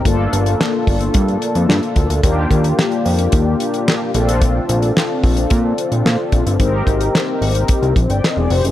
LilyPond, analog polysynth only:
\new Staff \with { instrumentName = "Analog polysynth" } { \time 4/4 \key g \minor \tempo 4 = 110 << { r1 | r1 | r1 | r2 r8. <d'' g''>16 <bes' ees''>16 <aes' d''>16 <g' c''>16 <ees' aes'>16 | } \\ { <bes d' f' a'>1 | <bes d' f' g'>2.~ <bes d' f' g'>8 <c' d' f' a'>8~ | <c' d' f' a'>1 | <c' ees' g' bes'>1 | } >> }